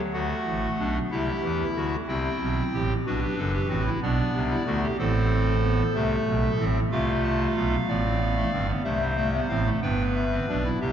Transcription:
0.13 D2 D3 A3 F#4 F#5
0.47 A1 A2
0.78 B1 B2 D4
1.11 C2 C3 E4 G4 E5
1.43 E2 E3
1.76 D2 D3 F#4
2.08 C2 C3 C4 E4 G5
2.41 B1 B2
2.74 A1 A2 G4
3.06 B1 B2 D4 F#4 B4
3.22 G4
3.38 F#1 F#2 A4
3.54 G4
3.69 A1 A2 C4 F#4
3.86 E4
4.02 B1 B2 B3 D4 D5
4.35 C2 C3
4.50 E4
4.66 D2 D3 A3 F#4
4.83 G4
4.99 A1 A2 C4 A4 C5
5.63 B3
5.95 C2 C3 A3 E5
6.28 B1 B2
6.59 A1 A2 C4
6.91 C2 C3 A3 F4 F5
7.24 A5
7.56 B1 B2 F5
7.88 A1 A2 B3 D5
8.04 C4
8.20 B3
8.36 A3
8.52 G1 G2 C4
8.68 B3
8.84 C2 C3 A3 C5 E5
9.00 G3
9.16 A3 E5
9.33 B3
9.49 A1 A2 C4 F5
9.65 A3
9.82 G1 G2 B3 B4 G5
10.15 E5
10.31 C4
10.49 B1 B2 D4 D5
10.65 E4
10.81 C2 C3 G4 E5

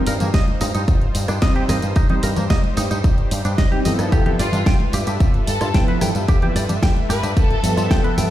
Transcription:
Already playing: G3 D#4 F4 C5
0.07 G2 A#4, open hi-hat, tambourine
0.20 G2 A#3, closed hi-hat, tambourine, low conga
0.34 G1 D#5, kick, snare, closed hi-hat, tambourine
0.47 closed hi-hat, high conga
0.61 G2 D#4, open hi-hat, tambourine, high conga
0.75 G2 D#4, closed hi-hat, tambourine
0.88 G1, kick, closed hi-hat, tambourine
1.01 closed hi-hat
1.15 G2, open hi-hat, tambourine
1.28 G2 D4, cross-stick, closed hi-hat, tambourine
1.42 G1 G3 C4 D#4 C5 D#5, kick, snare, closed hi-hat, tambourine
1.56 G4, closed hi-hat
1.68 G2 G3 C4 D#4 A#4 D#5, cross-stick, open hi-hat, tambourine, low conga
1.82 G2, closed hi-hat, tambourine
1.96 G1 D#4 G4, kick, closed hi-hat, tambourine
2.09 G3 C4 D#4 C5, closed hi-hat, low conga
2.23 G2 A#4, open hi-hat, tambourine
2.36 G2 A#3, closed hi-hat, tambourine, low conga
2.50 G1 D#5, kick, snare, closed hi-hat, tambourine
2.64 closed hi-hat, high conga
2.77 G2 D#4, open hi-hat, tambourine, high conga
2.91 G2 D#4, closed hi-hat, tambourine
3.04 G1, kick, closed hi-hat, tambourine
3.18 closed hi-hat
3.31 G2, open hi-hat, tambourine
3.45 G2 D4, closed hi-hat, tambourine
3.58 G1 D#5, kick, snare, closed hi-hat, tambourine
3.72 G3 C4 D#4 G4, closed hi-hat
3.85 G2 F3 B3 E4 A4 D#5, open hi-hat, tambourine, low conga
3.99 G2, cross-stick, closed hi-hat, tambourine
4.12 G1 F4 G4 A4 B4 E5, kick, closed hi-hat, tambourine
4.26 F3 B3 E4 G4 A4, closed hi-hat, low conga
4.39 G2 F4 D5, open hi-hat, tambourine
4.53 G2 D4, closed hi-hat, tambourine, low conga
4.66 G1 G5, kick, snare, closed hi-hat, tambourine
4.79 closed hi-hat, high conga
4.93 G2 G4, open hi-hat, tambourine, high conga
5.07 G2 G4, closed hi-hat, tambourine
5.20 G1, kick, closed hi-hat, tambourine
5.34 closed hi-hat
5.47 G2 A4, open hi-hat, tambourine
5.61 G2 F4, cross-stick, closed hi-hat, tambourine
5.74 G1 F3 B3 E4 B4 G5, kick, snare, closed hi-hat, tambourine
5.88 B4, closed hi-hat
6.01 G2 F3 B3 E4 A4 G5, cross-stick, open hi-hat, tambourine, low conga
6.15 G2, closed hi-hat, tambourine
6.28 G1 G4, kick, closed hi-hat, tambourine
6.42 F3 B3 E4 G4 B4, closed hi-hat, low conga
6.56 G2 D5, open hi-hat, tambourine
6.69 G2 D4, closed hi-hat, tambourine, low conga
6.83 G1 G5, kick, snare, closed hi-hat, tambourine
6.96 closed hi-hat, high conga
7.09 G2 G4 B4, open hi-hat, tambourine, high conga
7.23 G2 G4, closed hi-hat, tambourine
7.37 G1 A4, kick, closed hi-hat, tambourine
7.51 closed hi-hat
7.63 G2 F3 B3 A4 E5, open hi-hat, tambourine
7.77 G2 F4, closed hi-hat, tambourine
7.91 G1 G5, kick, snare, closed hi-hat, tambourine
8.04 B4, closed hi-hat
8.18 G2 G5, open hi-hat, tambourine, low conga

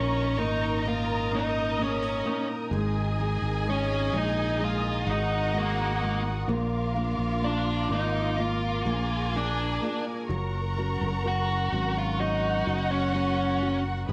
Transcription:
Already playing: A#1 A#2 A#3 C#4 D#4 A#4 C#5 D#5 A#5 C#6
0.37 G#1 A#3 C#4 D#4 D#5
0.85 A#3 D#4 F4 F5 D#6
1.32 A#3 C#4 D#4
1.36 D#5
1.79 A#3 C#4 G#4
1.84 C#5
2.03 A#4
2.25 A#3 D#4
2.71 G#1 G#2 G#3 G#4 A#4 D#5 G#5 D#6
3.17 G#3 D#4
3.42 G#1
3.65 G#3 G#4
3.70 C#4 C#5
4.13 A#1 G#3 D#4
4.17 D#4 D#5
4.59 G#3 G#4 A#5
4.64 F4 F5
5.07 G#1 G#3 D#4 F#4 D#5 F#5
5.53 G#3 A#4
5.58 A#3 A#4
6.01 G#3
6.48 A#1 A#2 A#3 F4 F5 D6
6.95 A#3 D4
7.19 A#1
7.42 A#3 F4 D5
7.46 D4
7.89 G#1 A#3 D#4 D#5
8.38 A#3 F4 F5
8.85 A#1 A#3 D4 G#4 G#5
9.33 A#3 D4 A#4
9.38 D5
9.82 A#3 F4
10.29 F#1 F#3 A#4 F#5 A#5 C#6
10.78 F#3 C#4
11.01 F#1
11.25 F#3 F#4 F#5
11.72 G#1 F#3 C#4
11.98 F4 F5
12.19 F#3 D#4 F#4 D#5 F#5
12.66 F#1 F#3 C#4
12.91 C#4 C#5
13.14 F#3 C#4 A#4 C#5
13.62 F#3
14.08 G#1 G#2 G#3 B4 D#5 G#5 B5 D#6

